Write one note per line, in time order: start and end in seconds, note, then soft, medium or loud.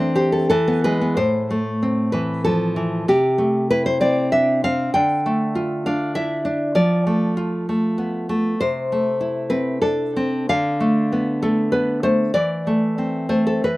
0.00 0.47 E3 medium
0.00 0.50 A3 medium
0.00 0.50 C4 medium
0.00 0.50 D4 soft
0.00 0.16 E5 medium
0.15 0.49 G4 medium
0.15 0.32 C5 medium
0.32 0.48 A4 medium
0.50 1.15 E3 medium
0.50 0.82 A4 medium
0.68 1.00 B3 medium
0.84 1.17 G#3 medium
0.84 1.16 B4 medium
1.01 1.17 B3 medium
1.17 3.03 A2 medium
1.17 2.09 C5 medium
1.51 2.45 A3 medium
1.82 2.77 C4 soft
2.12 2.75 E3 medium
2.12 2.43 B4 medium
2.44 3.08 F3 soft
2.44 3.05 A4 medium
2.76 3.07 E3 medium
3.08 4.89 C3 medium
3.08 3.67 G4 medium
3.38 4.30 A3 medium
3.71 4.62 E4 medium
3.71 3.85 B4 medium
3.86 4.00 C5 medium
4.01 4.63 C4 medium
4.01 4.29 D5 medium
4.32 4.94 D4 soft
4.32 4.61 E5 medium
4.64 4.94 C4 soft
4.64 4.93 F5 medium
4.94 6.73 D3 medium
4.94 5.82 G5 medium
5.26 6.18 A3 soft
5.55 6.44 F4 medium
5.86 6.44 D4 medium
5.86 6.15 F5 medium
6.15 6.75 E4 soft
6.15 6.73 E5 medium
6.45 6.75 D4 soft
6.75 8.54 F3 medium
6.75 7.33 D5 medium
7.07 7.68 A3 soft
7.37 8.28 F4 medium
7.69 8.28 A3 soft
7.98 8.59 B3 soft
8.29 8.59 A3 soft
8.61 10.47 C3 medium
8.61 9.48 C5 medium
8.92 9.83 A3 soft
9.21 10.15 E4 medium
9.50 9.81 C4 medium
9.50 9.80 B4 medium
9.82 10.50 D4 soft
9.82 10.47 A4 medium
10.16 10.49 C4 medium
10.49 12.31 D3 medium
10.49 11.39 F5 medium
10.80 11.41 A3 medium
11.12 11.72 B3 soft
11.42 12.02 A3 soft
11.42 11.72 A4 medium
11.72 12.33 B3 soft
11.72 12.02 B4 medium
12.03 12.34 A3 soft
12.03 12.33 C5 medium
12.34 13.59 E3 medium
12.34 13.26 D5 medium
12.67 13.28 A3 soft
12.98 13.63 C4 soft
13.29 13.63 A3 soft
13.29 13.46 C5 medium
13.47 13.63 A4 medium
13.64 13.77 E3 medium
13.64 13.77 B4 medium